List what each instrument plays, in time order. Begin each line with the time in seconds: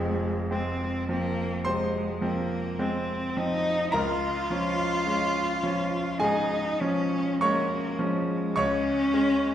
Already playing: grand piano F1 F2 F3 C4 G#4 G#5, cello G#3
0.51 grand piano G#3 C4, cello C4
1.09 grand piano F3 C4, cello A#3
1.65 grand piano C3 C5 C6, cello G#3
2.21 grand piano F3 C4, cello A#3
2.79 grand piano G#3 C4, cello C4
3.37 grand piano F3 C4, cello D#4
3.92 grand piano C#2 A#4 A#5, cello F4
4.50 grand piano F3 C#4
5.07 grand piano G#3 C#4
5.63 grand piano F3 C#4
6.20 grand piano G#2 G#4 G#5, cello D#4
6.81 grand piano F3 C#4, cello C#4
7.41 grand piano G#3 C#4 C#5 C#6, cello A#3
7.99 grand piano F3 C#4, cello G#3
8.56 grand piano C#2 C#5 C#6, cello C#4
9.14 grand piano G#3 C#4